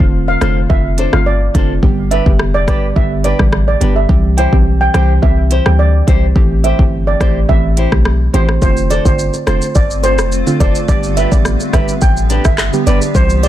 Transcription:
0.00 808-style bass E1, synth pluck D3 A3 C4 F4, kick
0.28 steel pan F5, muted nylon-string guitar stroke
0.41 808-style bass F1, synth pluck D3 A3 C4 F4, nylon-string guitar D4 A4 C5, steel pan F5, cross-stick, closed hi-hat
0.69 808-style bass F1, synth pluck D3 A3 C4 F4, steel pan E5, kick
0.97 nylon-string guitar D4 A4 C5, closed hi-hat
1.13 808-style bass G1, synth pluck D3 A3 C4 F4, steel pan F5, cross-stick
1.26 steel pan D5
1.54 808-style bass F1, synth pluck D3 A3 C4 F4, nylon-string guitar D4 A4 C5, kick, closed hi-hat
1.82 808-style bass G1, synth pluck D3 G3 B3 G4, kick
2.11 nylon-string guitar D4 G4 B4, steel pan E5, closed hi-hat
2.26 808-style bass F1, synth pluck D3 G3 B3 G4, kick
2.39 cross-stick
2.54 steel pan D5, muted nylon-string guitar stroke
2.67 808-style bass G1, synth pluck D3 G3 B3 G4, nylon-string guitar D4 G4 B4, steel pan D5, kick, cross-stick, closed hi-hat
2.96 808-style bass G1, synth pluck D3 G3 B3 G4, steel pan E5, kick
3.24 nylon-string guitar D4 G4 B4, steel pan D5, closed hi-hat
3.39 808-style bass A1, synth pluck D3 G3 B3 G4, kick, cross-stick
3.53 cross-stick
3.68 steel pan D5
3.81 808-style bass G1, synth pluck D3 G3 B3 G4, nylon-string guitar D4 G4 B4, closed hi-hat
3.96 steel pan E5, muted nylon-string guitar stroke
4.09 808-style bass C2, synth pluck E3 G3 C4 G4, kick
4.37 nylon-string guitar E4 G4 C5, steel pan G5, closed hi-hat
4.52 808-style bass B1, synth pluck E3 G3 C4 G4, kick
4.81 steel pan G5, muted nylon-string guitar stroke
4.94 808-style bass C2, synth pluck E3 G3 C4 G4, nylon-string guitar E4 G4 C5, steel pan G5, cross-stick, closed hi-hat
5.22 808-style bass C2, synth pluck E3 G3 C4 G4, steel pan E5, kick
5.50 nylon-string guitar E4 G4 C5, closed hi-hat
5.65 808-style bass D2, synth pluck E3 G3 C4 G4, steel pan G5, cross-stick
5.79 steel pan D5
6.07 808-style bass C2, synth pluck E3 G3 C4 G4, nylon-string guitar E4 G4 C5, kick, closed hi-hat
6.35 808-style bass A1, synth pluck E3 A3 C4 G4, kick
6.64 nylon-string guitar E4 G4 C5, steel pan E5, closed hi-hat
6.79 808-style bass G1, synth pluck E3 A3 C4 G4, kick
7.07 steel pan D5, muted nylon-string guitar stroke
7.20 808-style bass A1, synth pluck E3 A3 C4 G4, nylon-string guitar E4 G4 C5, steel pan D5, kick, cross-stick, closed hi-hat
7.49 808-style bass A1, synth pluck E3 A3 C4 G4, steel pan E5, kick
7.77 nylon-string guitar E4 G4 C5, closed hi-hat
7.92 808-style bass B1, synth pluck E3 A3 C4 G4, kick, cross-stick
8.05 cross-stick
8.33 808-style bass A1, synth pluck E3 A3 C4 G4, nylon-string guitar E4 G4 C5, steel pan C5, closed hi-hat
8.49 muted nylon-string guitar stroke, cross-stick
8.62 808-style bass F1, synth pluck D3 A3 C4 F4, ambient pad D3 A3 C4 F4, steel pan C5, kick, shaker
8.77 shaker
8.90 nylon-string guitar D4 A4 C5, steel pan D5, closed hi-hat, shaker
9.05 808-style bass G1, synth pluck D3 A3 C4 F4, steel pan C5, kick, shaker
9.19 shaker
9.33 muted nylon-string guitar stroke, shaker
9.47 808-style bass F1, synth pluck D3 A3 C4 F4, nylon-string guitar D4 A4 C5, steel pan C5, cross-stick, closed hi-hat, shaker
9.62 shaker
9.75 808-style bass G1, steel pan D5, kick, shaker
9.90 shaker
10.03 nylon-string guitar D4 A4 C5, steel pan C5, closed hi-hat, shaker
10.18 808-style bass F1, cross-stick, shaker
10.32 shaker
10.47 synth pluck D3 A3 C4 F4, shaker
10.60 808-style bass F1, nylon-string guitar D4 A4 C5, steel pan D5, kick, closed hi-hat, shaker
10.75 shaker
10.88 808-style bass G1, synth pluck D3 G3 B3 G4, ambient pad G3 B3 G4, steel pan D5, kick, shaker
11.03 shaker
11.16 nylon-string guitar D4 G4 B4, steel pan E5, closed hi-hat, shaker
11.31 808-style bass A1, synth pluck D3 G3 B3 G4, steel pan D5, kick, shaker
11.45 cross-stick, shaker
11.60 muted nylon-string guitar stroke, shaker
11.73 808-style bass G1, synth pluck D3 G3 B3 G4, nylon-string guitar D4 G4 B4, steel pan E5, kick, cross-stick, closed hi-hat, shaker
11.88 shaker
12.02 808-style bass A1, steel pan G5, kick, shaker
12.17 shaker
12.30 nylon-string guitar D4 G4 B4, closed hi-hat, shaker
12.45 808-style bass G1, steel pan E5, kick, cross-stick, shaker
12.58 cross-stick, clap, shaker
12.73 synth pluck D3 G3 B3 G4, shaker
12.86 808-style bass G1, nylon-string guitar D4 G4 B4, steel pan D5, closed hi-hat, shaker
13.01 muted nylon-string guitar stroke, shaker
13.15 808-style bass C2, synth pluck E3 G3 C4 G4, steel pan C5, kick, shaker
13.30 shaker
13.43 nylon-string guitar E4 G4 C5, steel pan D5, closed hi-hat, shaker

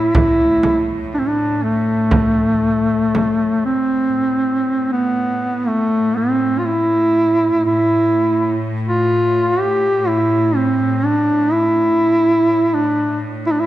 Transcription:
Already playing: cello section A2, duduk E4
0.15 duduk E4, frame drum
0.63 frame drum
1.14 duduk D4
1.19 duduk C4
1.27 duduk D4
1.63 duduk A3
2.11 frame drum
3.15 frame drum
3.65 duduk C4
4.18 cello section A2
4.92 duduk B3
5.68 duduk A3
6.17 duduk C4
6.59 duduk F4
6.66 duduk E4
7.66 duduk E4
8.88 duduk F4
9.60 duduk G4
10.08 duduk E4
10.56 duduk C4
11.05 duduk D4
11.53 duduk E4
12.74 duduk D4
13.46 duduk E4
13.51 duduk D4
13.60 duduk E4

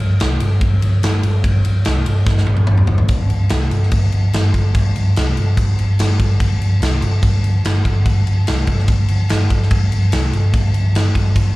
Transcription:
0.00 picked electric bass G1
0.20 picked electric bass C2, snare, ride
0.40 picked electric bass G1, ride
0.61 picked electric bass G1, kick, ride
0.82 picked electric bass G1, ride
1.03 picked electric bass G1, snare, ride
1.23 picked electric bass G1, ride
1.44 picked electric bass G1, kick, ride
1.65 picked electric bass G1, ride
1.85 picked electric bass C2, snare, ride
2.06 picked electric bass G1, ride
2.27 picked electric bass G1, kick, snare
2.38 snare
2.47 picked electric bass G1, high tom
2.57 high tom
2.67 picked electric bass G1, mid tom
2.78 mid tom
2.87 picked electric bass G1, floor tom
2.98 floor tom
3.08 picked electric bass G1, kick, crash
3.30 picked electric bass G1, crash
3.49 picked electric bass C2, snare, crash
3.71 picked electric bass G1, crash
3.83 snare
3.91 picked electric bass G1, kick, crash
4.12 picked electric bass G1, crash
4.33 picked electric bass G1, snare, crash
4.54 picked electric bass G1, kick, crash
4.75 picked electric bass G1, kick, crash
4.96 picked electric bass G1, crash
5.16 picked electric bass C2, snare, crash
5.37 picked electric bass G1, crash
5.57 picked electric bass G1, kick, crash
5.79 picked electric bass G1, crash
5.99 picked electric bass G1, snare, crash
6.20 picked electric bass G1, kick, crash
6.40 picked electric bass G1, kick, crash
6.60 picked electric bass G1, crash
6.80 picked electric bass C2, snare, crash
7.02 picked electric bass G1, crash
7.23 picked electric bass G1, kick, crash
7.43 picked electric bass G1, crash
7.64 picked electric bass G1, snare, crash
7.85 picked electric bass G1, kick, crash
8.06 picked electric bass G1, kick, crash
8.27 picked electric bass G1, crash
8.47 picked electric bass C2, snare, crash
8.67 picked electric bass G1, kick, crash
8.79 snare
8.88 picked electric bass G1, kick, crash
9.08 picked electric bass G1, crash
9.29 picked electric bass G1, snare, crash
9.50 picked electric bass G1, kick, crash
9.62 snare
9.71 picked electric bass G1, kick, crash
9.92 picked electric bass G1, crash
10.12 picked electric bass C2, snare, crash
10.33 picked electric bass G1, crash
10.54 picked electric bass G1, kick, crash
10.74 picked electric bass G1, crash
10.93 picked electric bass G1, snare, crash
11.15 picked electric bass G1, kick, crash
11.36 picked electric bass G1, kick, crash

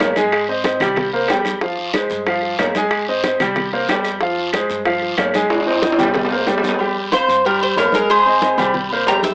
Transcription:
0.00 upright bass G#2, grand piano A#3 A#4 C#5, high bongo, low bongo, high conga, short guiro
0.16 grand piano G#3 G#4 G#5, high bongo, high conga, high timbale, short guiro
0.32 high bongo, high conga, high timbale, long guiro
0.48 grand piano C4 C5 D#5, high conga
0.64 grand piano C4 C5 D#5, high bongo, high conga, high timbale, low timbale, short guiro
0.80 upright bass C2, grand piano G3 G4 G5, high bongo, high conga, low conga, high timbale, short guiro
0.96 high bongo, high conga, low conga, high timbale, long guiro
1.13 grand piano A#3 A#4 C5, high bongo, high conga
1.28 upright bass F2, grand piano G3 G4 G5, high bongo, low bongo, high conga, high timbale, low timbale, short guiro
1.45 high bongo, high conga, high timbale, short guiro
1.61 grand piano F3 F4 F5, high bongo, high conga, long guiro
1.78 high conga
1.94 grand piano G#3 G#4 C5, high bongo, high conga, high timbale, low timbale, short guiro
2.10 upright bass G2, high bongo, high conga, short guiro
2.26 grand piano F3 F4 F5, high bongo, high conga, high timbale, long guiro
2.43 high bongo, high conga
2.59 upright bass G#2, grand piano A#3 A#4 C#5, high bongo, low bongo, high conga, high timbale, low timbale, short guiro
2.75 grand piano G#3 G#4 G#5, high bongo, high conga, high timbale, short guiro
2.91 high bongo, high conga, high timbale, long guiro
3.08 grand piano C4 C5 D#5, high conga
3.24 grand piano C4 C5 D#5, high bongo, high conga, high timbale, low timbale, short guiro
3.40 upright bass C2, grand piano G3 G4 G5, high bongo, high conga, low conga, high timbale, short guiro
3.56 high bongo, high conga, low conga, high timbale, long guiro
3.73 grand piano A#3 A#4 C5, high bongo, high conga
3.89 upright bass F2, grand piano G3 G4 G5, high bongo, low bongo, high conga, high timbale, low timbale, short guiro
4.04 high bongo, high timbale, short guiro
4.21 grand piano F3 F4 F5, high bongo, high conga, long guiro
4.37 high conga
4.53 grand piano G#3 G#4 C5, high bongo, high conga, high timbale, low timbale, short guiro
4.70 upright bass G2, high bongo, high conga, short guiro
4.85 grand piano F3 F4 F5, high bongo, high conga, high timbale, long guiro
5.02 high bongo, high conga
5.18 upright bass G#2, grand piano A#3 A#4 C#5, high bongo, low bongo, high conga, high timbale, low timbale, short guiro
5.34 grand piano G#3 G#4 G#5, high bongo, high conga, high timbale, short guiro
5.50 high bongo, high conga, high timbale, long guiro
5.61 high timbale
5.67 grand piano C4 C5 D#5, high conga, high timbale
5.82 grand piano C4 C5 D#5, high bongo, high conga, high timbale, short guiro
5.92 high timbale
5.98 upright bass C2, grand piano G3 G4 G5, high bongo, high conga, low conga, short guiro
6.03 low timbale
6.14 high bongo, high conga, low conga, low timbale, long guiro
6.25 low timbale
6.31 grand piano A#3 A#4 C5, high bongo, high conga
6.46 upright bass F2, grand piano G3 G4 G5, high bongo, low bongo, high conga, low timbale, short guiro
6.58 low timbale
6.63 high bongo, high conga, short guiro
6.69 low timbale
6.79 grand piano G3 G4 G5, high conga, low agogo, long guiro
6.96 high conga
7.12 grand piano C4 C5 F5, cuban tres C5, high conga, low timbale, low agogo, short guiro
7.28 upright bass G2, high conga, short guiro
7.44 grand piano G3 G4 G5, cuban tres A#4, high conga, low agogo, long guiro
7.61 cuban tres C5, high conga, low agogo
7.76 upright bass G#2, grand piano A#3 A#4 C#5, cuban tres A#4, high conga, low timbale, low agogo, short guiro
7.92 grand piano G#3 G#4 G#5, cuban tres A#4, high conga, short guiro
8.10 cuban tres G#4 C5, high conga, low agogo, long guiro
8.26 grand piano C4 C5 D#5, high conga
8.42 grand piano C4 C5 D#5, high conga, low timbale, low agogo, short guiro
8.58 upright bass C2, grand piano G3 G4 G5, high conga, low conga, low agogo, short guiro
8.74 high conga, low conga, long guiro
8.90 grand piano A#3 A#4 C5, high conga, low agogo
9.07 upright bass F2, grand piano G3 G4 G5, cuban tres A#5, high conga, low timbale, low agogo, short guiro
9.23 cuban tres E5, high conga, short guiro

